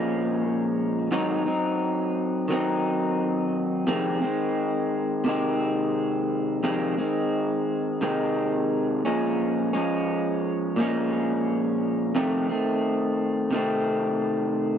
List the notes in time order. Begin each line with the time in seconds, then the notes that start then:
Already playing: A#2 F3 G#3 C#4
1.11 G#2 D#3 F#3 C4 D#4
1.46 F#3 C4 D#4
2.48 D#3 F#3 C4
2.53 D#4
3.87 F2 C3 D#3 G#3 C4
4.21 D#3 G#3 C4
5.24 C3 D#3 G#3
5.29 C4
6.63 F2 C3 D#3 G#3 C4
6.97 D#3 G#3 C4
8.01 C3 D#3 G#3 C4
9.05 A#2 F3 G#3 C#4
9.73 F3 G#3 C#4
10.76 A#2 F3 G#3
10.81 C#4
12.15 F2 C3 D#3 A3 C4
12.49 D#3 A3 C4
13.51 C3 D#3 A3
13.56 C4